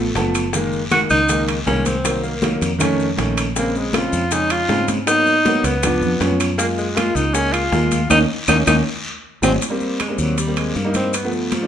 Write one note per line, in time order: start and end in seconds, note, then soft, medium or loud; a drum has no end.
0.00 0.12 A1 medium
0.00 0.36 A3 medium
0.15 1.05 F#1 medium
0.15 0.42 F3 medium
0.15 0.43 A3 medium
0.15 0.43 B3 medium
0.15 0.51 A5 medium
0.15 high bongo medium
0.15 low bongo medium
0.15 high conga medium
0.15 high timbale medium
0.15 short guiro medium
0.15 maracas soft
0.34 high timbale medium
0.34 short guiro medium
0.34 claves medium
0.34 maracas medium
0.53 0.81 D#3 medium
0.53 0.81 G#3 medium
0.53 0.81 A#3 medium
0.53 high bongo medium
0.53 high conga soft
0.53 high timbale medium
0.53 long guiro medium
0.53 maracas medium
0.72 high conga soft
0.72 maracas soft
0.90 1.18 D#3 medium
0.90 1.18 G#3 medium
0.90 1.19 A#3 medium
0.90 1.00 F#4 loud
0.90 high bongo medium
0.90 high conga loud
0.90 high timbale medium
0.90 short guiro medium
0.90 claves medium
0.90 maracas soft
1.10 1.63 C#2 medium
1.10 1.46 D#4 loud
1.10 high conga soft
1.10 short guiro medium
1.10 maracas medium
1.29 1.56 D#3 medium
1.29 1.56 G#3 medium
1.29 1.57 A#3 medium
1.29 high bongo medium
1.29 high conga soft
1.29 high timbale medium
1.29 long guiro medium
1.29 maracas medium
1.48 high conga soft
1.48 high timbale loud
1.48 claves medium
1.48 maracas soft
1.66 2.56 C2 medium
1.66 1.93 D#3 medium
1.66 1.94 G#3 medium
1.66 1.94 A#3 medium
1.66 1.87 C#4 medium
1.66 high bongo medium
1.66 low bongo medium
1.66 high conga medium
1.66 low timbale medium
1.66 short guiro medium
1.66 maracas soft
1.85 2.23 C4 loud
1.85 high conga medium
1.85 high timbale medium
1.85 short guiro medium
1.85 maracas medium
2.05 2.32 D#3 medium
2.05 2.32 F#3 medium
2.05 2.32 A#3 medium
2.05 high bongo medium
2.05 high conga soft
2.05 high timbale medium
2.05 long guiro medium
2.05 claves medium
2.05 maracas medium
2.24 2.59 A#3 medium
2.24 high bongo soft
2.24 high conga soft
2.24 maracas soft
2.42 2.69 D#3 medium
2.42 2.69 F#3 medium
2.42 2.70 A#3 medium
2.42 high bongo medium
2.42 high conga loud
2.42 high timbale medium
2.42 short guiro medium
2.42 maracas soft
2.61 3.15 F2 medium
2.61 high bongo soft
2.61 high conga soft
2.61 high timbale medium
2.61 short guiro medium
2.61 maracas medium
2.79 3.06 D#3 medium
2.79 3.07 A3 loud
2.79 3.07 C#4 loud
2.79 high bongo medium
2.79 high conga soft
2.79 low conga medium
2.79 high timbale loud
2.79 long guiro medium
2.79 claves medium
2.79 maracas medium
2.99 high bongo soft
2.99 high conga soft
2.99 maracas soft
3.16 4.07 A#1 medium
3.16 3.44 D#3 medium
3.16 3.45 A3 medium
3.16 3.45 C#4 medium
3.16 high bongo medium
3.16 low bongo medium
3.16 high conga medium
3.16 high timbale medium
3.16 short guiro medium
3.16 maracas soft
3.37 high timbale medium
3.37 short guiro medium
3.37 claves medium
3.37 maracas medium
3.56 3.83 C#3 medium
3.56 3.83 G#3 medium
3.56 3.79 A#3 loud
3.56 3.84 C4 medium
3.56 high bongo medium
3.56 high conga soft
3.56 high timbale medium
3.56 long guiro medium
3.56 maracas medium
3.75 3.97 G#3 medium
3.75 high conga soft
3.75 maracas soft
3.93 4.20 C#3 medium
3.93 4.21 G#3 medium
3.93 4.21 C4 medium
3.93 4.35 F4 loud
3.93 high bongo medium
3.93 high conga medium
3.93 high timbale medium
3.93 short guiro medium
3.93 claves medium
3.93 maracas soft
4.12 4.66 F2 medium
4.12 high conga soft
4.12 short guiro medium
4.12 maracas medium
4.31 4.58 C#3 medium
4.31 4.59 G#3 medium
4.31 4.59 C#4 medium
4.31 4.54 D#4 loud
4.31 high bongo medium
4.31 high conga soft
4.31 high timbale medium
4.31 long guiro medium
4.31 maracas medium
4.50 4.90 F4 loud
4.50 high conga soft
4.50 high timbale loud
4.50 claves medium
4.50 maracas soft
4.68 5.58 G#2 medium
4.68 4.96 C#3 medium
4.68 4.96 G#3 medium
4.68 4.97 C4 medium
4.68 high bongo medium
4.68 low bongo medium
4.68 high conga medium
4.68 low timbale medium
4.68 short guiro medium
4.68 maracas soft
4.88 high conga medium
4.88 high timbale medium
4.88 short guiro medium
4.88 maracas medium
5.07 5.34 F#3 medium
5.07 5.34 A#3 medium
5.07 5.35 B3 medium
5.07 5.67 D#4 loud
5.07 high bongo medium
5.07 high conga soft
5.07 high timbale medium
5.07 long guiro medium
5.07 claves medium
5.07 maracas medium
5.26 high bongo soft
5.26 high conga soft
5.26 maracas soft
5.45 5.72 F#3 medium
5.45 5.72 A#3 medium
5.45 5.73 B3 medium
5.45 high bongo medium
5.45 high conga medium
5.45 high timbale medium
5.45 short guiro medium
5.45 maracas soft
5.64 5.99 C#2 medium
5.64 6.41 B3 loud
5.64 high bongo soft
5.64 high conga soft
5.64 high timbale medium
5.64 short guiro medium
5.64 maracas medium
5.83 6.10 F3 medium
5.83 6.10 B3 medium
5.83 6.11 D4 medium
5.83 high bongo medium
5.83 high conga soft
5.83 low conga medium
5.83 high timbale loud
5.83 long guiro medium
5.83 claves medium
5.83 maracas medium
6.01 6.20 F2 medium
6.01 high bongo soft
6.01 high conga soft
6.01 low conga medium
6.01 maracas soft
6.20 7.10 F#2 medium
6.20 6.47 F3 medium
6.20 6.48 B3 medium
6.20 6.48 C#4 loud
6.20 high bongo medium
6.20 low bongo medium
6.20 high conga medium
6.20 high timbale medium
6.20 short guiro medium
6.20 maracas soft
6.40 high timbale medium
6.40 short guiro medium
6.40 claves medium
6.40 maracas medium
6.58 6.85 G#3 medium
6.58 6.67 A#3 loud
6.58 6.86 A#3 medium
6.58 6.86 F4 medium
6.58 high bongo medium
6.58 high conga soft
6.58 high timbale medium
6.58 long guiro medium
6.58 maracas medium
6.78 6.98 G#3 medium
6.78 high conga soft
6.78 maracas soft
6.95 7.22 G#3 medium
6.95 7.23 A#3 medium
6.95 7.23 F4 medium
6.95 7.17 F4 loud
6.95 high bongo medium
6.95 high conga loud
6.95 high timbale loud
6.95 short guiro medium
6.95 claves medium
6.95 maracas soft
7.15 7.68 C#2 medium
7.15 7.35 D#4 medium
7.15 short guiro medium
7.15 maracas medium
7.33 7.60 G#3 medium
7.33 7.61 A#3 medium
7.33 7.55 C#4 loud
7.33 7.61 G#4 medium
7.33 high bongo medium
7.33 high conga soft
7.33 high timbale medium
7.33 long guiro medium
7.33 maracas medium
7.53 8.10 F4 loud
7.53 high conga soft
7.53 high timbale medium
7.53 claves medium
7.53 maracas soft
7.71 8.08 D#2 medium
7.71 7.98 G#3 medium
7.71 7.99 A#3 medium
7.71 7.99 F4 medium
7.71 high bongo medium
7.71 low bongo medium
7.71 high conga medium
7.71 low timbale medium
7.71 short guiro medium
7.71 maracas soft
7.91 high conga medium
7.91 high timbale medium
7.91 short guiro medium
7.91 maracas medium
8.10 8.25 D#2 medium
8.10 8.23 A#3 medium
8.10 8.23 C#4 medium
8.10 8.23 D#4 medium
8.10 8.20 D#4 loud
8.10 low bongo loud
8.10 high conga loud
8.10 high timbale loud
8.10 long guiro loud
8.10 claves medium
8.10 maracas loud
8.48 8.62 D#2 loud
8.48 8.61 A#3 medium
8.48 8.61 C#4 loud
8.48 8.60 D#4 medium
8.48 8.58 D#4 medium
8.48 low bongo loud
8.48 high conga loud
8.48 high timbale loud
8.48 long guiro loud
8.48 claves loud
8.48 maracas medium
8.67 8.81 D#2 medium
8.67 8.80 A#3 medium
8.67 8.80 C#4 loud
8.67 8.79 D#4 loud
8.67 8.77 D#4 medium
8.67 low bongo loud
8.67 high conga loud
8.67 high timbale loud
8.67 long guiro medium
8.67 claves loud
8.67 maracas medium
9.42 9.57 G#1 medium
9.42 9.55 F#3 loud
9.42 9.55 G#3 medium
9.42 9.55 C4 medium
9.42 9.53 C4 loud
9.42 low bongo loud
9.42 high conga loud
9.42 high timbale medium
9.42 long guiro loud
9.42 claves medium
9.42 maracas medium
9.62 high conga soft
9.62 high timbale medium
9.62 long guiro medium
9.62 maracas medium
9.70 9.97 G3 medium
9.70 9.98 A#3 medium
9.70 9.98 C4 medium
9.80 high conga soft
9.80 maracas soft
10.00 10.22 G#3 medium
10.00 high conga medium
10.00 high timbale medium
10.00 short guiro medium
10.00 claves medium
10.00 maracas soft
10.09 10.35 G3 medium
10.09 10.36 A#3 medium
10.09 10.36 C4 medium
10.18 10.71 D#2 medium
10.18 10.40 F#3 medium
10.18 short guiro medium
10.18 maracas medium
10.38 10.59 G3 medium
10.38 high conga soft
10.38 high timbale medium
10.38 long guiro medium
10.38 maracas medium
10.47 10.74 G3 medium
10.47 10.74 A#3 medium
10.47 10.75 C4 medium
10.57 10.78 G#3 medium
10.57 high conga soft
10.57 high timbale medium
10.57 claves medium
10.57 maracas soft
10.75 11.64 G2 medium
10.75 10.95 A#3 medium
10.75 high conga medium
10.75 short guiro medium
10.75 maracas soft
10.85 11.11 G3 medium
10.85 11.12 A#3 medium
10.85 11.12 D#4 medium
10.94 11.17 C4 loud
10.94 high conga medium
10.94 high timbale medium
10.94 short guiro medium
10.94 maracas medium
11.13 11.33 B3 medium
11.13 high conga soft
11.13 high timbale medium
11.13 long guiro medium
11.13 claves medium
11.13 maracas medium
11.23 11.50 F3 medium
11.23 11.50 A3 medium
11.23 11.51 B3 medium
11.32 11.50 D3 soft
11.32 high conga soft
11.32 maracas soft
11.51 11.67 F3 medium
11.51 high conga loud
11.51 high timbale medium
11.51 short guiro medium
11.51 maracas soft
11.61 11.67 F3 medium
11.61 11.67 A3 medium
11.61 11.67 D4 medium